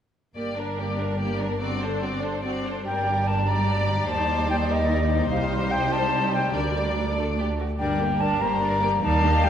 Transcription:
0.36 double bass section G1, cello section G2, viola section A#3, violin section G4 D5
0.57 viola section D4, violin section A#4
0.78 viola section A#3, violin section G4 D5
0.99 viola section D4, violin section A#4
1.19 viola section A#3, violin section G4 D5
1.40 viola section D4, violin section A#4
1.61 viola section C4, violin section F#4 D5
1.81 viola section D4, violin section A4 C5
2.02 viola section C4, violin section F#4 D5
2.23 viola section D4, violin section A4 C5
2.43 viola section C4, violin section F#4 D5
2.64 viola section D4, violin section A4 C5
2.85 double bass section G1, cello section G2, viola section G3 D4, violin section G4 A#4 D5, flute G5
3.27 flute A5
3.48 violin section D5, flute A#5
4.09 cello section D#2, double bass section D#2, viola section D#4, violin section C5, flute A5
4.50 flute G5
4.70 violin section A#4, flute D#5
4.89 violin section A#4
5.10 violin section C5
5.31 cello section C2, double bass section C2, viola section G3, violin section G4 C5, flute F5
5.71 flute G5
5.92 flute A5
6.34 flute G5
6.54 double bass section D2, cello section D2, viola section D4, violin section A#4 D5, flute D5
7.17 viola section A3, violin section A4
7.39 violin section G4
7.60 violin section F#4
7.79 double bass section G1, cello section G2, viola section G3 D4, violin section A#4 D5, flute G5
7.99 viola section A#3, violin section G4 A#4
8.20 viola section G3 D4, violin section A#4 D5, flute A5
8.41 double bass section G1, cello section G2, viola section A#3, violin section G4 A#4 C5, flute A#5
8.61 viola section G3 D4, violin section A#4 D5
8.82 viola section A#3, violin section G4 A#4 D5
9.02 double bass section D#2, cello section D#2, viola section G3 D#4, violin section A#4 D5 F5, flute A5
9.23 viola section A#3 D4, violin section G4 D#5
9.43 viola section G3 D#4, violin section A#4 D5, flute G5

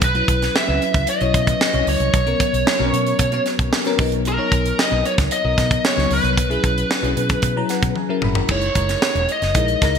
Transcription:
0.02 fingered electric bass B1, lead electric guitar B4, kick, closed hi-hat
0.14 fm electric piano F#3 C#4 E4 B4, closed hi-hat
0.28 fingered electric bass B1, kick, closed hi-hat
0.42 snare, closed hi-hat
0.56 lead electric guitar E5, snare
0.67 fingered electric bass C#2, fm electric piano F#3 C#4 E4 B4
0.82 closed hi-hat
0.94 fingered electric bass C#2, kick, closed hi-hat
1.07 lead electric guitar D#5, closed hi-hat
1.21 fingered electric bass B1, fm electric piano F#3 C#4 E4 C#5, closed hi-hat
1.34 fingered electric bass B2, kick, closed hi-hat
1.47 kick, closed hi-hat
1.61 snare
1.73 fingered electric bass B1, fm electric piano F#3 C#4 E4 C#5, closed hi-hat
1.87 fingered electric bass C#2, lead electric guitar C#5, open hi-hat
2.00 fingered electric bass C2, closed hi-hat
2.14 fingered electric bass B1, kick, closed hi-hat
2.26 fm electric piano F#3 B3 C#4 A#4, closed hi-hat
2.40 kick, closed hi-hat
2.53 fingered electric bass B1, closed hi-hat
2.67 snare
2.79 fingered electric bass B1, fm electric piano F#3 B3 C#4 A#4
2.93 fingered electric bass B2, closed hi-hat
3.06 closed hi-hat
3.19 fingered electric bass B2, kick, closed hi-hat
3.32 fm electric piano F#3 B3 C#4 C#5, closed hi-hat
3.46 snare, closed hi-hat
3.59 fingered electric bass B1, kick, closed hi-hat
3.73 snare
3.85 fm electric piano F#3 B3 C#4 A#4, snare, closed hi-hat
3.98 fingered electric bass B1, fm electric piano F#3 B3 D#4 A#4, kick, open hi-hat
4.12 closed hi-hat
4.25 lead electric guitar A#4, closed hi-hat
4.37 fm electric piano F#3 B3 D#4 C#5
4.52 fingered electric bass B1, kick, closed hi-hat
4.66 closed hi-hat
4.79 lead electric guitar D#5, snare
4.90 fingered electric bass B1, fm electric piano F#3 B3 D#4 A#4
5.05 lead electric guitar C#5, closed hi-hat
5.18 fingered electric bass C#2, kick, snare, closed hi-hat
5.31 lead electric guitar D#5, closed hi-hat
5.44 fingered electric bass B1, fm electric piano F#3 B3 D#4 A#4
5.58 fingered electric bass B2, kick, snare, closed hi-hat
5.71 kick, closed hi-hat
5.85 lead electric guitar C#5, snare
5.96 fingered electric bass C#2, fm electric piano F#3 B3 D#4 C#5, snare
6.10 fingered electric bass C#2, lead electric guitar B4, open hi-hat
6.24 fingered electric bass C2, closed hi-hat
6.37 fingered electric bass B1, kick, closed hi-hat
6.49 fm electric piano F#3 C#4 E4 G#4, closed hi-hat
6.64 fingered electric bass B1, kick, closed hi-hat
6.78 closed hi-hat
6.91 snare
7.02 fingered electric bass B1, fm electric piano F#3 C#4 E4 G#4, closed hi-hat
7.17 fingered electric bass B2, closed hi-hat
7.29 kick, closed hi-hat
7.42 fingered electric bass B2, kick, closed hi-hat
7.56 fm electric piano F#3 C#4 E4 A#5
7.69 fm electric piano F#5, snare, closed hi-hat
7.83 fingered electric bass B2, kick, closed hi-hat
7.96 fm electric piano G#5, high tom
8.09 fm electric piano F#3 C#4 E4 A#4
8.22 fingered electric bass G1, fm electric piano B5, mid tom
8.35 floor tom
8.48 fingered electric bass F#1, fm electric piano G#3 D#4 E4 A#4, lead electric guitar C#5, kick, crash
8.61 closed hi-hat
8.75 fingered electric bass F#1, fm electric piano G#3 D#4 E4 A#4, kick, closed hi-hat
8.89 snare, closed hi-hat
9.02 snare
9.15 fingered electric bass E1, closed hi-hat
9.29 lead electric guitar D#5, closed hi-hat
9.42 fingered electric bass F#1, snare, closed hi-hat
9.55 fingered electric bass A#1, fm electric piano G#3 D#4 E4 A#4, kick, closed hi-hat
9.68 closed hi-hat
9.81 fingered electric bass C#2, fm electric piano G#3 D#4 E4 A#4, kick, snare, closed hi-hat
9.95 closed hi-hat

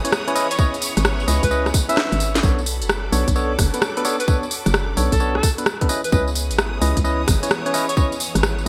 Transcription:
Already playing: string section E3 C#5 B5 D#6, analog synth pad B3 C#4 E4 G#4
0.04 tine electric piano C#4 E4 B4 C#5, closed hi-hat, tambourine
0.12 cross-stick, tambourine
0.28 tine electric piano C#4 E4 B4 C#5, closed hi-hat
0.35 tine electric piano C#4 E4 B4 D#5, open hi-hat, tambourine
0.51 alto saxophone C#5, closed hi-hat, tambourine
0.58 tine electric piano C#4 E4 B4 D#5, alto saxophone C#5, kick, tambourine
0.74 closed hi-hat, tambourine
0.82 open hi-hat, tambourine
0.97 fm bass G#1, cross-stick, closed hi-hat, tambourine
1.05 cross-stick, tambourine
1.20 tambourine
1.28 fm bass C#2, tine electric piano C#4 E4 B4 D#5, open hi-hat, tambourine
1.43 fm bass C#2, alto saxophone B4, kick, closed hi-hat, tambourine
1.51 tine electric piano C#4 E4 B4 D#5, tambourine, swell
1.66 cross-stick, tambourine
1.74 kick, open hi-hat, tambourine
1.89 tine electric piano C#4 E4 B4 E5, alto saxophone E5, closed hi-hat, tambourine
1.97 cross-stick, snare, tambourine
2.12 fm bass G#1, closed hi-hat, tambourine
2.20 open hi-hat, tambourine
2.35 snare, closed hi-hat, tambourine
2.43 fm bass B1, tine electric piano B3 D4 A4 C#5, analog synth pad C#4 D4 F#4 A4, string section A4, kick, tambourine
2.58 tambourine
2.66 open hi-hat, tambourine
2.81 fm bass F#1, closed hi-hat, tambourine
2.89 string section D6, cross-stick, tambourine
3.12 fm bass B1, tine electric piano B3 D4 A4 C#5, open hi-hat, tambourine
3.28 fm bass B1, kick, closed hi-hat, tambourine
3.36 tine electric piano B3 D4 A4 C#5, tambourine
3.59 fm bass F#1, kick, cross-stick, open hi-hat, tambourine
3.74 tine electric piano B3 D4 A4 B4, closed hi-hat, tambourine
3.82 cross-stick, tambourine
3.97 tine electric piano B3 D4 A4 B4, closed hi-hat
4.05 tine electric piano B3 D4 A4 C#5, open hi-hat, tambourine
4.20 alto saxophone B4, closed hi-hat, tambourine
4.27 tine electric piano B3 D4 A4 C#5, alto saxophone B4, kick, tambourine
4.43 tambourine
4.51 open hi-hat, tambourine
4.66 fm bass F#1, cross-stick, closed hi-hat, tambourine
4.74 cross-stick, tambourine
4.97 fm bass B1, tine electric piano B3 D4 A4 C#5, open hi-hat, tambourine
5.12 fm bass B1, alto saxophone A4, kick, closed hi-hat, tambourine
5.20 tine electric piano B3 D4 A4 C#5, tambourine
5.35 alto saxophone A4, cross-stick
5.43 kick, open hi-hat, tambourine
5.58 tine electric piano B3 D4 A4 B4, closed hi-hat, tambourine
5.66 cross-stick, tambourine
5.81 tine electric piano B3 D4 A4 B4, kick, closed hi-hat
5.89 string section E3, analog synth pad B3 C#4 E4 G#4, tine electric piano C#4 E4 B4 D#5, open hi-hat, tambourine
6.04 alto saxophone B4, string section D#6, closed hi-hat, tambourine
6.12 fm bass C#2, tine electric piano C#4 E4 B4 D#5, alto saxophone B4, kick, tambourine
6.27 string section C#5, tambourine
6.35 open hi-hat, tambourine
6.50 fm bass G#1, closed hi-hat, tambourine
6.58 cross-stick, tambourine
6.81 fm bass C#2, tine electric piano C#4 E4 B4 D#5, open hi-hat, tambourine
6.97 fm bass C#2, kick, closed hi-hat, tambourine
7.04 tine electric piano C#4 E4 B4 D#5, tambourine
7.28 fm bass G#1, kick, cross-stick, open hi-hat, tambourine
7.43 tine electric piano C#4 E4 B4 C#5, closed hi-hat, tambourine
7.51 cross-stick, tambourine
7.66 tine electric piano C#4 E4 B4 C#5, closed hi-hat
7.74 tine electric piano C#4 E4 B4 D#5, open hi-hat, tambourine
7.89 alto saxophone C#5, closed hi-hat, tambourine
7.97 tine electric piano C#4 E4 B4 D#5, alto saxophone C#5, kick, tambourine
8.12 closed hi-hat, tambourine
8.20 open hi-hat, tambourine
8.35 fm bass G#1, cross-stick, closed hi-hat, tambourine
8.43 cross-stick, tambourine
8.58 tambourine

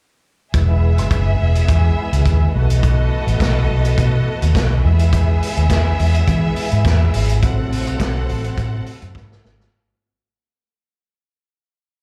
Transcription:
0.54 fingered electric bass E1, tonewheel organ E3 G#3 B3 E4, string section B3 G#4 E5, kick, closed hi-hat
0.98 fingered electric bass F#1, closed hi-hat
1.11 fingered electric bass F#1, kick, closed hi-hat
1.41 fingered electric bass E1
1.55 closed hi-hat
1.68 fingered electric bass E2, kick, closed hi-hat
2.13 fingered electric bass C#2, closed hi-hat
2.26 fingered electric bass D#2, kick, closed hi-hat
2.54 fingered electric bass B1, tonewheel organ A3 B3 F#4, string section B3 A4 D#5
2.70 closed hi-hat
2.83 kick, closed hi-hat
3.27 fingered electric bass A1, closed hi-hat
3.40 fingered electric bass B1, kick, snare, closed hi-hat
3.70 fingered electric bass B1
3.85 closed hi-hat
3.98 fingered electric bass B2, kick, closed hi-hat
4.42 fingered electric bass D#2, closed hi-hat
4.55 fingered electric bass B1, kick, snare, closed hi-hat
4.84 fingered electric bass E2, tonewheel organ G#3 E4, string section B3 G#4 E5
4.99 closed hi-hat
5.13 kick, closed hi-hat
5.43 open hi-hat
5.57 fingered electric bass D#2, closed hi-hat
5.70 fingered electric bass E2, kick, snare, closed hi-hat
5.99 fingered electric bass E2, open hi-hat
6.14 closed hi-hat
6.27 fingered electric bass E3, kick, closed hi-hat
6.56 open hi-hat
6.72 fingered electric bass G#2, closed hi-hat
6.85 fingered electric bass E2, kick, snare, closed hi-hat
7.14 fingered electric bass G#1, open hi-hat
7.29 closed hi-hat
7.42 fingered electric bass A1, tonewheel organ C3 F#3 A3, string section C4 A4 F#5, kick, closed hi-hat
7.72 open hi-hat
7.87 fingered electric bass B1, closed hi-hat
8.00 fingered electric bass B1, kick, snare, closed hi-hat
8.29 fingered electric bass A1, open hi-hat
8.44 closed hi-hat
8.57 fingered electric bass A2, kick, closed hi-hat
8.86 open hi-hat
9.02 fingered electric bass F#2, closed hi-hat
9.15 fingered electric bass G#2, kick, snare
9.32 snare
9.45 fingered electric bass G#1, snare
9.60 snare

